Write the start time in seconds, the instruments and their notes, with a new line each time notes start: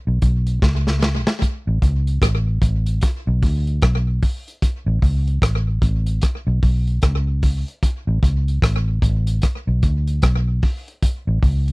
0.07 fingered electric bass B1
0.22 fingered electric bass B1, kick, closed hi-hat
0.47 closed hi-hat
0.62 fingered electric bass C#2, kick, snare
0.87 snare
1.02 snare
1.27 snare
1.42 kick, closed hi-hat
1.67 fingered electric bass A1
1.82 fingered electric bass C#2, kick, closed hi-hat
2.07 closed hi-hat
2.22 fingered electric bass A1, kick, cross-stick, closed hi-hat
2.62 fingered electric bass A1, kick, closed hi-hat
2.86 closed hi-hat
3.01 kick, closed hi-hat
3.27 fingered electric bass B1
3.42 fingered electric bass D2, kick, open hi-hat
3.67 closed hi-hat
3.82 fingered electric bass B1, kick, cross-stick, closed hi-hat
4.22 kick, open hi-hat
4.48 closed hi-hat
4.62 kick, closed hi-hat
4.86 fingered electric bass A1
5.02 fingered electric bass C#2, kick, open hi-hat
5.27 closed hi-hat
5.42 fingered electric bass A1, kick, cross-stick, closed hi-hat
5.82 fingered electric bass A1, kick, closed hi-hat
6.06 closed hi-hat
6.21 kick, cross-stick, closed hi-hat
6.47 fingered electric bass B1
6.63 fingered electric bass B1, kick, open hi-hat
6.87 closed hi-hat
7.02 fingered electric bass C#2, kick, cross-stick, closed hi-hat
7.43 kick, open hi-hat
7.68 closed hi-hat
7.83 kick, closed hi-hat
8.07 fingered electric bass A1
8.23 fingered electric bass C#2, kick, closed hi-hat
8.48 closed hi-hat
8.62 fingered electric bass A1, kick, cross-stick, closed hi-hat
9.02 fingered electric bass A1, kick, closed hi-hat
9.27 closed hi-hat
9.42 kick, cross-stick, closed hi-hat
9.67 fingered electric bass B1
9.83 fingered electric bass D2, kick, closed hi-hat
10.07 closed hi-hat
10.22 fingered electric bass B1, kick, cross-stick, closed hi-hat
10.62 kick, open hi-hat
10.88 closed hi-hat
11.02 kick, closed hi-hat
11.27 fingered electric bass A1
11.43 fingered electric bass C#2, kick, open hi-hat
11.68 closed hi-hat